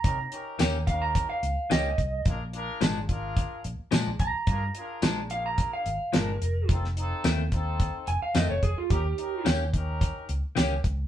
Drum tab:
HH |x-x-x-x-x-x-x-x-|x-x-x-x-x-x-x-x-|x-x-x-x-x-x-x-x-|x-x-x-x-x-x-x-x-|
TB |----x-------x---|----x-------x---|----x-------x---|----x-------x---|
SD |----o-------o---|----o-------o---|----o-------o---|-o--o-------o---|
BD |o-----o-o-----o-|o-----o-o-----o-|o-------o-------|o-----o-o-----o-|

HH |x-x-x-x-x-x-x-x-|
TB |----x-------x---|
SD |----o-------o---|
BD |o-----o-o-----o-|